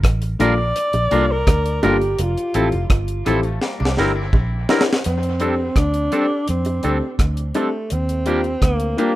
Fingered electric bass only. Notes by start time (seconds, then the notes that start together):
0.04 A1
0.40 A#1
0.94 A#1
1.12 C2
1.48 D2
1.83 G1
2.19 F1
2.55 A1
2.73 F1
2.90 G1
3.27 A1
3.81 C2
3.98 G1
4.33 A#1
5.06 F2
5.76 D2
6.49 F2
6.85 D2
7.19 D2
7.92 D#2
8.62 D2